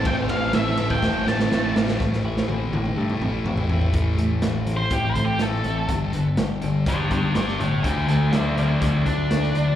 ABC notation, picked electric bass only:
X:1
M:4/4
L:1/8
Q:1/4=123
K:Am
V:1 name="Picked electric bass" clef=bass
A,,, A,,, A,,, A,,, A,,, A,,, A,,, A,,, | A,,, A,,, A,,, A,,, G,, A,,, A,,, A,,, | A,,, A,,, A,,,2 A,,, A,,, A,,, A,,, | G,,, G,,, G,,, G,,, G,,, G,, G,,, G,,, |
D,, D,, D,,2 D,, D,, D,, D,, |]